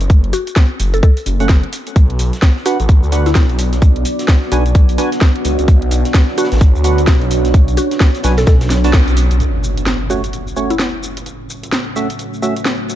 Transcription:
0.01 closed hi-hat, shaker
0.10 F#1, kick, closed hi-hat, shaker
0.24 closed hi-hat
0.33 F#4, open hi-hat, shaker
0.47 closed hi-hat, shaker
0.56 kick, snare, closed hi-hat, shaker
0.80 F#1, open hi-hat, shaker
0.94 A4, closed hi-hat, shaker
1.03 A4, kick, closed hi-hat, shaker
1.17 open hi-hat, shaker
1.26 F#1, open hi-hat, shaker
1.40 A3 C#4 F#4 F#5, closed hi-hat, shaker
1.49 F#1, kick, snare, closed hi-hat, shaker
1.63 closed hi-hat
1.73 open hi-hat, shaker
1.87 closed hi-hat, shaker
1.96 B1 B3 D4 F#4 D5, kick, closed hi-hat, shaker
2.10 closed hi-hat
2.19 B1, closed hi-hat, open hi-hat, shaker
2.33 snare, closed hi-hat, shaker
2.42 kick, snare, closed hi-hat, shaker
2.57 snare
2.66 D4 F#4 B4 F#5, closed hi-hat, open hi-hat, shaker
2.80 A1, closed hi-hat, shaker
2.89 kick, closed hi-hat, shaker
3.03 D2, shaker
3.12 D4 F#4 B4 F#5, closed hi-hat, open hi-hat, shaker
3.26 E4, snare, closed hi-hat, shaker
3.35 B1, kick, snare, closed hi-hat, open hi-hat, shaker
3.49 closed hi-hat
3.59 closed hi-hat, open hi-hat, shaker
3.72 snare, closed hi-hat, shaker
3.82 B1, kick, closed hi-hat, shaker
3.96 closed hi-hat
4.05 closed hi-hat, open hi-hat, shaker
4.19 snare, closed hi-hat, shaker
4.28 kick, snare, closed hi-hat, shaker
4.42 snare
4.52 B1 D4 F#4 B4 G#5, closed hi-hat, open hi-hat, shaker
4.66 closed hi-hat, shaker
4.75 B1, kick, closed hi-hat, shaker
4.89 open hi-hat, shaker
4.98 D4 F#4 B4 G#5, closed hi-hat, open hi-hat, shaker
5.12 snare, closed hi-hat, shaker
5.21 kick, snare, closed hi-hat, shaker
5.36 closed hi-hat
5.45 C#2, closed hi-hat, open hi-hat, shaker
5.59 C#2, closed hi-hat, shaker
5.68 B1 C#5, kick, closed hi-hat, shaker
5.82 closed hi-hat
5.91 B1, closed hi-hat, open hi-hat, shaker
6.05 snare, closed hi-hat, shaker
6.14 kick, snare, closed hi-hat, shaker
6.28 snare
6.38 D4 F#4 B4 F#5, closed hi-hat, open hi-hat, shaker
6.44 snare, closed hi-hat
6.52 A1, snare, closed hi-hat, shaker
6.56 snare, closed hi-hat
6.61 kick, closed hi-hat, shaker
6.75 D2, shaker
6.84 D4 F#4 B4 F#5, open hi-hat, shaker
6.98 closed hi-hat, shaker
7.07 B1, kick, snare, closed hi-hat, open hi-hat, shaker
7.22 closed hi-hat
7.31 closed hi-hat, open hi-hat, shaker
7.45 snare, closed hi-hat, shaker
7.54 B1, kick, closed hi-hat, shaker
7.68 closed hi-hat, shaker
7.77 F#4, closed hi-hat, open hi-hat, shaker
7.91 snare, closed hi-hat, shaker
8.00 kick, snare, closed hi-hat, shaker
8.14 snare, closed hi-hat, shaker
8.23 B1 D4 F#4 B4 G#5, snare, closed hi-hat, open hi-hat, shaker
8.37 A4, snare, closed hi-hat, shaker
8.47 B1 A4, kick, snare, closed hi-hat, shaker
8.61 snare, closed hi-hat, open hi-hat, shaker
8.70 B1, snare, closed hi-hat, open hi-hat, shaker
8.84 D4 F#4 B4 A5, snare, closed hi-hat, shaker
8.93 B1, kick, snare, closed hi-hat, shaker
9.08 closed hi-hat, shaker
9.16 closed hi-hat, open hi-hat, shaker
9.31 B1, closed hi-hat, shaker
9.40 A3 C#4 F#4 C#5, closed hi-hat, impact, shaker
9.64 closed hi-hat, shaker
9.77 snare, closed hi-hat, shaker
9.86 snare, closed hi-hat, shaker
10.00 snare
10.10 A3 C#4 F#4 C#5, shaker
10.24 closed hi-hat, shaker
10.33 closed hi-hat, shaker
10.48 shaker
10.56 A3 C#4 F#4 C#5, shaker
10.70 E4, closed hi-hat, shaker
10.79 snare, closed hi-hat, shaker
10.94 closed hi-hat
11.03 closed hi-hat, shaker
11.17 snare, closed hi-hat, shaker
11.26 closed hi-hat, shaker
11.50 closed hi-hat, shaker
11.63 snare, closed hi-hat, shaker
11.72 snare, closed hi-hat, shaker
11.87 snare
11.96 A3 C#4 F#4 E5, shaker
12.10 closed hi-hat, shaker
12.19 closed hi-hat, shaker
12.34 shaker
12.42 A3 C#4 F#4 E5, closed hi-hat, shaker
12.55 snare, closed hi-hat, shaker
12.65 snare, closed hi-hat, shaker
12.88 closed hi-hat, shaker

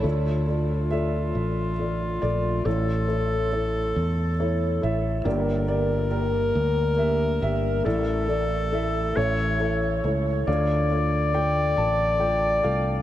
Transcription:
0.02 D2 D3 A3 F4 A4 D5
0.07 F4
0.47 A3 F4 D5
0.90 A3 F4 A4 D5 E5
1.35 A1
1.79 A3 F4 D5
2.22 A#1 A3 F4 D5
2.64 A1 A2 A3 E4 A4 C#5
3.08 A3 E4 C#5
3.52 A3 E4 C#5
3.96 E2
4.39 A3 E4 C#5
4.81 A1 A3 E4 E5
5.24 G1 G2 A#3 G4 A#4 D5
5.67 A#3 G4 D5
6.10 A#3 G4 A#4
6.55 D2
6.97 A#3 G4 E5
7.41 G1 A#3 G4 E5
7.83 A1 A2 A3 E4 A4 D5
8.28 A3 E4 D5
8.72 A3 E4 E5
9.16 A1 A2 A3 E4 C#5
9.59 A3 E4 C#5
10.04 C#2 A3 E4 C#5
10.46 D2 D3 A3 F4 A4 D5 F5
10.91 A3 F4 D5
11.33 A3 F4 D5 G5
11.77 A1 A5
12.20 A3 F4 D5 G5
12.64 C2 A3 F4 A4 F5

